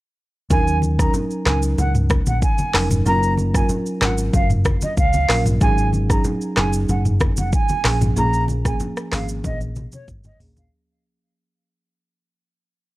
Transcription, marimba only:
0.50 F#3 C#4 D#4 A#4
0.99 F#3 C#4 D#4 A#4
1.46 F#3 C#4 D#4 A#4
2.74 F#3 C#4 D#4 A#4
3.06 F#3 C#4 F4 A#4
3.54 F#3 C#4 F4 A#4
4.01 F#3 C#4 F4 A#4
5.29 F#3 C#4 F4 A#4
5.61 F#3 C#4 D#4 G#4
6.09 F#3 C#4 D#4 G#4
6.57 F#3 C#4 D#4 G#4
7.84 F3 A#3 C#4 G#4
8.16 F3 A#3 C#4 G#4
8.65 F3 A#3 C#4 G#4
9.12 F3 A#3 C#4 G#4
10.40 F3 A#3 C#4 G#4

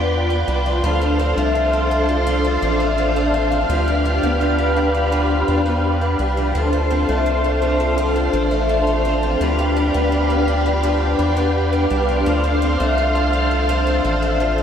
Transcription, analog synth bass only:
Already playing: E2
0.48 C2
0.83 D2
1.37 C2
2.62 A1
3.69 D2
4.23 D2
5.48 E2
6.19 C2
6.55 D2
7.09 C2
8.33 A1
9.40 D2
9.95 D2
11.19 E2
11.91 C2
12.26 D2
12.80 C2
14.05 A1

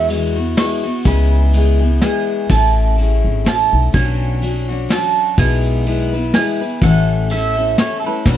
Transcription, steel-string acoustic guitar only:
Already playing: E3 B3 E4 F#4
0.09 G#3 B3 E4 F#4
0.36 B3 E4 F#4
0.57 G#3 B3 E4 F#4
0.83 B3 E4 F#4
1.05 C#3 G#3 B3 E4 G#4
1.54 G#3 B3 E4 G#4
1.80 B3 E4 G#4
2.02 G#3 B3 E4 G#4
2.50 A3 C#4 E4
2.97 A3 C#4 E4 G#4
3.45 A3 C#4 E4
3.93 B2 F#3 C#4 D4 F#4
4.42 F#3 C#4 D4 F#4
4.68 C#4 D4 F#4
4.89 F#3 C#4 D4 F#4
5.38 B2 G#3 B3 E4 B4
5.86 G#3 B3 E4 B4
6.13 B3 E4 B4
6.35 G#3 B3 E4 B4
6.61 B3 E4 B4
6.83 A2 E3 A3 C#4 E4 A4
7.30 A3 C#4 E4 A4
7.57 A3 C#4 E4 A4
7.78 A3 C#4 E4 A4
8.04 A3 C#4 E4 A4
8.26 B2 F#3 D4 F#4 B4

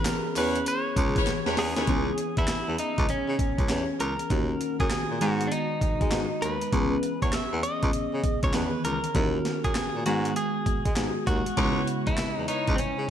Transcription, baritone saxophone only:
0.36 E2
0.96 C#2
1.46 E2
1.57 E2
1.76 D#2
1.88 C#2
2.37 E2
2.68 E2
2.98 C#2
3.09 C#3
3.28 C#3
3.58 C#2
3.69 E2
4.00 C#2
4.30 D#2
4.80 F#2
5.10 A#2
5.21 G#2
5.81 G#3
6.01 G#3
6.12 G#2
6.43 D#2
6.73 C#2
7.22 E2
7.52 E2
7.83 C#2
7.94 C#3
8.13 C#3
8.43 C#2
8.54 E2
8.85 C#2
9.15 D#2
9.64 F#2
9.95 A#2
10.06 G#2
10.66 G#3
10.86 G#3
10.96 G#2
11.27 D#2
11.57 C#2
12.07 E2
12.37 E2
12.68 C#2
12.79 C#3
12.98 C#3

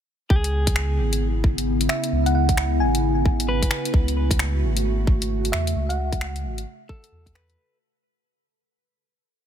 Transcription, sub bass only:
0.30 C#2
0.98 G#1
2.12 C#2
2.80 G#1
3.94 C#2
4.62 G#1
5.53 E2
5.76 C#2
6.44 G#1
7.12 E2

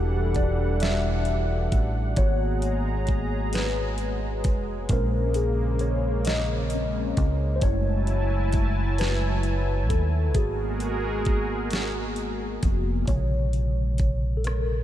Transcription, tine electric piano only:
Already playing: G3 D4 F#4 G4 A4
0.36 D5
0.82 G3 D4 F#4 E5
2.18 A#3 B3 F#4 C#5
3.54 B4
4.91 G#3 C#4 A#4 C5
5.36 G#4
5.81 C#5
6.27 D#5
6.73 G#3 C4 C#4
7.56 C5
7.63 G#3 A3 E4 C#5
8.99 B4
9.89 A4
10.35 A#3 B3 F#4 G#4
12.63 A#3 B3 F#4
13.08 C3 C#3 G#3 C#5
14.37 A4
14.45 A#4

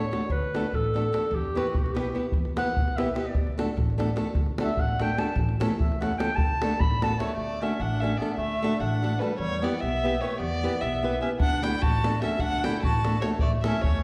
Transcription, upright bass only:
0.30 D2
0.74 A1
1.31 E2
1.74 B1
2.33 E2
2.77 B1
3.34 D2
3.77 A1
4.35 D2
4.78 A1
5.36 A1
5.79 E2
6.36 D2
6.79 A1
7.37 D2
7.80 A1
8.37 D2
8.80 A1
9.38 E2
9.82 B1
10.40 E2
10.82 B1
11.39 D2
11.83 A1
12.40 D2
12.83 A1
13.41 A1
13.83 E2

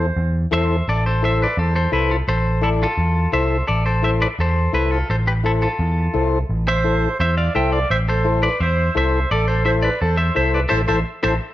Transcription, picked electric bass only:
0.16 E2
0.52 E2
0.88 A1
1.57 E2
1.93 C2
2.28 A1
2.98 E2
3.33 C2
3.69 A1
4.39 E2
4.73 C2
5.10 A1
5.79 E2
6.15 C2
6.49 A1
7.20 E2
7.56 C2
7.90 A1
8.60 E2
8.96 C2
9.31 A1
10.02 E2
10.37 C2
10.72 A1
10.89 A1
11.25 A1

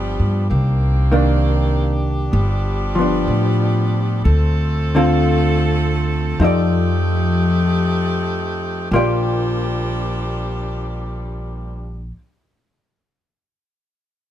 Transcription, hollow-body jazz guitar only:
Already playing: F3 B3 D4
1.12 D#3 A#3 D4
2.95 F3 B3
3.01 D4
4.95 D3 C4 F4 A4
6.40 F3 D#4 A4
6.44 D5
8.93 A#3 F4 G4 D5

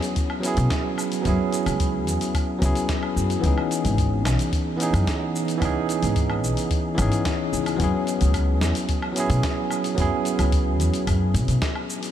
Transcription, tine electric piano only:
Already playing: F#3 B3 C#4 E4 G#4
0.40 F#3 B3 C#4
0.46 E4 G#4
1.22 F#3 B3 C#4
1.27 E4 G#4
2.58 F#3 B3 C#4
2.64 E4 G#4
3.40 E3 B3 C#4
3.45 D#4 G#4
4.76 E3 B3 C#4
4.81 D#4 G#4
5.58 E3 B3 C#4
5.63 D#4 G#4
6.95 E3 B3 C#4
7.00 D#4 G#4
7.76 F#3 B3 C#4
7.82 E4 G#4
9.13 F#3 B3 C#4
9.18 E4 G#4
9.95 F#3 B3 C#4
10.00 E4 G#4

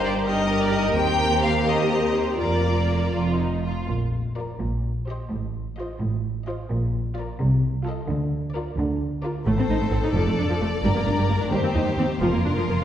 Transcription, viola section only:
Already playing: C5
0.27 A#4
0.96 G4
2.40 F4
4.36 F4
5.08 G4
5.78 F4
6.48 F4
7.17 F4
7.86 F4
8.55 F4
9.24 F4
9.46 A3
9.59 C4
9.70 D#4
9.80 A3
9.92 C4
10.03 D#4
10.15 F3
10.26 A3
10.38 D4
10.49 F3
10.61 A3
10.84 G3
10.95 A#3
11.06 D4
11.18 G3
11.29 A#3
11.41 D4
11.52 G3
11.63 C4
11.74 D#4
11.85 G3
11.98 C4
12.21 F3
12.33 A#3
12.45 D4
12.57 F3
12.69 A#3

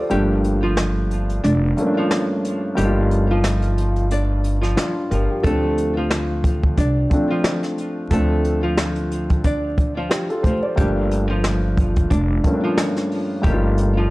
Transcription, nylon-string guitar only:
0.11 G3 G4
0.63 F3 F4
1.44 D4 D5
1.97 F3 F4
2.77 G3 G4
3.31 F3 F4
4.11 D4 D5
4.61 F3 F4
5.43 A3 A4
5.97 F3 F4
6.77 D4 D5
7.30 F3 F4
8.11 A3 A4
8.63 F3 F4
9.44 D4 D5
9.97 F3 F4
10.77 G3 G4
11.30 F3 F4
12.10 D4 D5
12.64 F3 F4
13.43 G3 G4
13.97 F3 F4

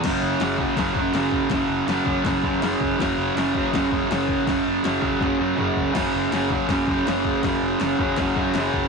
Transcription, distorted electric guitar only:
0.04 F#2 C#3 F#3
0.40 F#2 C#3 F#3
0.58 F#3
0.62 C#3
0.77 F#2 C#3 F#3
0.95 F#3
0.99 C#3
1.14 F#2 C#3 F#3
1.50 F#2 C#3 F#3
1.87 F#2 C#3 F#3
2.05 C#3 F#3
2.24 F#2 C#3 F#3
2.44 C#3 F#3
2.61 F#2 C#3 F#3
2.98 F#2 C#3 F#3
3.36 F#2 C#3 F#3
3.54 F#3
3.58 C#3
3.72 F#2 C#3
3.77 F#3
3.90 C#3 F#3
4.08 F#2 C#3
4.12 F#3
4.46 F#2 C#3 F#3
4.83 F#2 C#3
4.87 F#3
5.01 F#3
5.05 C#3
5.20 F#2 C#3
5.24 F#3
5.38 F#3
5.42 C#3
5.56 F#2 C#3
5.61 F#3
5.92 F#2 C#3 F#3
6.31 F#2 C#3
6.36 F#3
6.50 C#3 F#3
6.67 F#2 C#3
6.72 F#3
6.87 F#3
6.91 C#3
7.05 F#2 C#3 F#3
7.43 F#2 C#3 F#3
7.80 F#2 C#3 F#3
7.99 F#3
8.03 C#3
8.19 F#2 C#3 F#3
8.36 F#3
8.40 C#3
8.55 F#2 C#3
8.60 F#3

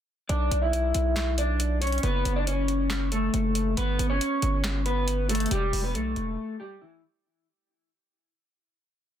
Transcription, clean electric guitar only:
0.29 D4 D5
0.62 E4 E5
1.38 D4 D5
1.81 C#4 C#5
2.04 B3 B4
2.36 D4 D5
2.47 C#4 C#5
3.12 A3 A4
3.77 B3 B4
4.10 C#4 C#5
4.86 B3 B4
5.29 A3 A4
5.51 G3 G4
5.84 B3 B4
5.94 A3 A4
6.60 G3 G4
6.81 E3 E4

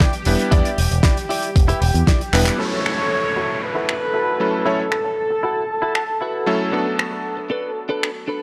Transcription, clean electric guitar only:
0.00 E4 G4 D5
0.25 muted clean electric guitar stroke
0.51 E4 G4 D5
1.03 E4 G4 D5
1.29 E4 G4 D5
1.68 E4 G4 B4
1.82 G5
1.94 muted clean electric guitar stroke
2.07 E4 G4 D5
2.33 muted clean electric guitar stroke
2.59 E4 F#4 A4
2.84 muted clean electric guitar stroke
2.97 muted clean electric guitar stroke
3.23 muted clean electric guitar stroke
3.36 E4 F#4 A4
3.75 E4 F#4 B4
4.14 E4 F#4 A4
4.65 E4 F#4 A4
4.91 muted clean electric guitar stroke
5.04 muted clean electric guitar stroke
5.30 muted clean electric guitar stroke
5.43 E4 F#4 A4
5.82 E4 F#4 A4
5.96 A5
6.21 E4 F#4 B4 F#5
6.47 C#5
6.72 D4 A4 B4
6.98 muted clean electric guitar stroke
7.11 muted clean electric guitar stroke
7.37 muted clean electric guitar stroke
7.50 D4 A4 B4
7.89 D4 A4 B4
8.27 D4 A4 B4

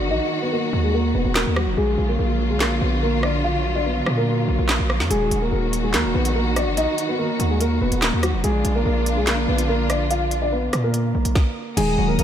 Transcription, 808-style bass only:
0.00 F#1
0.11 A#1
0.73 D#2
1.15 D#1
1.25 D#1
1.46 D#2
1.67 F1
1.77 A#1
1.98 A#1
2.19 A#1
2.50 B1
2.66 A#1
2.81 A#1
4.06 A#2
4.48 A#1
4.58 A#1
4.79 A#1
5.00 F2
5.11 D#1
5.31 D#1
5.52 D#1
5.94 D#2
6.04 D#1
6.15 A#1
6.67 F#1
6.77 A#1
7.40 D#2
7.81 D#1
7.92 D#1
8.13 D#2
8.33 F1
8.44 A#1
8.65 A#1
8.86 A#1
9.17 B1
9.32 A#1
9.48 A#1
10.73 A#2
11.15 A#1
11.25 A#1
11.77 D#1
11.98 D#1
12.19 D#1

